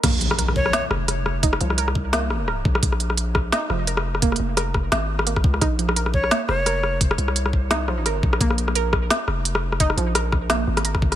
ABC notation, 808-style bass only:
X:1
M:4/4
L:1/8
Q:"Swing 16ths" 1/4=172
K:Bbm
V:1 name="808-style bass" clef=bass
B,,,4 z F,,,3- | F,,, C,,6 B,,, | B,,,4 z F,,,3- | F,,, F,,,3 A,,,3 D,, |
B,,,4 z F,,,3- | F,,, C,,6 B,,, | B,,,4 z F,,,3- | F,,, B,,,4 A,,,3 |]